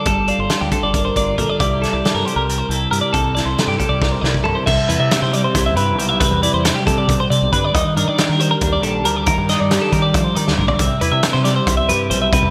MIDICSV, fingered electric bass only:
0, 0, Header, 1, 2, 480
1, 0, Start_track
1, 0, Tempo, 438276
1, 62, Time_signature, 7, 3, 24, 8
1, 13694, End_track
2, 0, Start_track
2, 0, Title_t, "Fingered electric bass"
2, 0, Program_c, 0, 33
2, 64, Note_on_c, 0, 31, 75
2, 336, Note_off_c, 0, 31, 0
2, 421, Note_on_c, 0, 31, 82
2, 513, Note_off_c, 0, 31, 0
2, 671, Note_on_c, 0, 38, 83
2, 760, Note_off_c, 0, 38, 0
2, 909, Note_on_c, 0, 31, 82
2, 1181, Note_off_c, 0, 31, 0
2, 1275, Note_on_c, 0, 31, 80
2, 1454, Note_off_c, 0, 31, 0
2, 1513, Note_on_c, 0, 34, 85
2, 1602, Note_off_c, 0, 34, 0
2, 1753, Note_on_c, 0, 36, 75
2, 2024, Note_off_c, 0, 36, 0
2, 2117, Note_on_c, 0, 36, 88
2, 2205, Note_off_c, 0, 36, 0
2, 2350, Note_on_c, 0, 43, 85
2, 2441, Note_off_c, 0, 43, 0
2, 2585, Note_on_c, 0, 36, 85
2, 2861, Note_off_c, 0, 36, 0
2, 2946, Note_on_c, 0, 36, 80
2, 3131, Note_off_c, 0, 36, 0
2, 3192, Note_on_c, 0, 43, 75
2, 3284, Note_off_c, 0, 43, 0
2, 3438, Note_on_c, 0, 36, 85
2, 3709, Note_off_c, 0, 36, 0
2, 3784, Note_on_c, 0, 36, 80
2, 3879, Note_off_c, 0, 36, 0
2, 4024, Note_on_c, 0, 43, 82
2, 4119, Note_off_c, 0, 43, 0
2, 4261, Note_on_c, 0, 36, 80
2, 4539, Note_off_c, 0, 36, 0
2, 4627, Note_on_c, 0, 36, 86
2, 4812, Note_off_c, 0, 36, 0
2, 4865, Note_on_c, 0, 43, 78
2, 4960, Note_off_c, 0, 43, 0
2, 5116, Note_on_c, 0, 36, 85
2, 5207, Note_off_c, 0, 36, 0
2, 5354, Note_on_c, 0, 40, 74
2, 5445, Note_off_c, 0, 40, 0
2, 5470, Note_on_c, 0, 48, 89
2, 5563, Note_off_c, 0, 48, 0
2, 5718, Note_on_c, 0, 48, 80
2, 5989, Note_off_c, 0, 48, 0
2, 6079, Note_on_c, 0, 36, 84
2, 6323, Note_off_c, 0, 36, 0
2, 6323, Note_on_c, 0, 43, 83
2, 6557, Note_off_c, 0, 43, 0
2, 6557, Note_on_c, 0, 35, 89
2, 6827, Note_off_c, 0, 35, 0
2, 6910, Note_on_c, 0, 40, 93
2, 7092, Note_off_c, 0, 40, 0
2, 7158, Note_on_c, 0, 40, 87
2, 7337, Note_off_c, 0, 40, 0
2, 7524, Note_on_c, 0, 48, 78
2, 7881, Note_off_c, 0, 48, 0
2, 8000, Note_on_c, 0, 48, 90
2, 8087, Note_off_c, 0, 48, 0
2, 8124, Note_on_c, 0, 35, 92
2, 8209, Note_off_c, 0, 35, 0
2, 8242, Note_on_c, 0, 43, 87
2, 8418, Note_off_c, 0, 43, 0
2, 8482, Note_on_c, 0, 39, 94
2, 8567, Note_off_c, 0, 39, 0
2, 8726, Note_on_c, 0, 43, 76
2, 8810, Note_off_c, 0, 43, 0
2, 8855, Note_on_c, 0, 51, 92
2, 8935, Note_off_c, 0, 51, 0
2, 9082, Note_on_c, 0, 51, 86
2, 9348, Note_off_c, 0, 51, 0
2, 9437, Note_on_c, 0, 39, 88
2, 9672, Note_off_c, 0, 39, 0
2, 9672, Note_on_c, 0, 34, 97
2, 9909, Note_off_c, 0, 34, 0
2, 9909, Note_on_c, 0, 38, 88
2, 10179, Note_off_c, 0, 38, 0
2, 10273, Note_on_c, 0, 43, 94
2, 10451, Note_off_c, 0, 43, 0
2, 10524, Note_on_c, 0, 43, 86
2, 10697, Note_off_c, 0, 43, 0
2, 10868, Note_on_c, 0, 51, 76
2, 11228, Note_off_c, 0, 51, 0
2, 11349, Note_on_c, 0, 51, 88
2, 11437, Note_off_c, 0, 51, 0
2, 11477, Note_on_c, 0, 38, 92
2, 11562, Note_off_c, 0, 38, 0
2, 11594, Note_on_c, 0, 34, 78
2, 11770, Note_off_c, 0, 34, 0
2, 11819, Note_on_c, 0, 36, 81
2, 11910, Note_off_c, 0, 36, 0
2, 12063, Note_on_c, 0, 40, 72
2, 12152, Note_off_c, 0, 40, 0
2, 12174, Note_on_c, 0, 48, 89
2, 12267, Note_off_c, 0, 48, 0
2, 12420, Note_on_c, 0, 48, 82
2, 12692, Note_off_c, 0, 48, 0
2, 12780, Note_on_c, 0, 36, 82
2, 13012, Note_on_c, 0, 43, 90
2, 13029, Note_off_c, 0, 36, 0
2, 13256, Note_on_c, 0, 35, 86
2, 13272, Note_off_c, 0, 43, 0
2, 13528, Note_off_c, 0, 35, 0
2, 13608, Note_on_c, 0, 40, 90
2, 13694, Note_off_c, 0, 40, 0
2, 13694, End_track
0, 0, End_of_file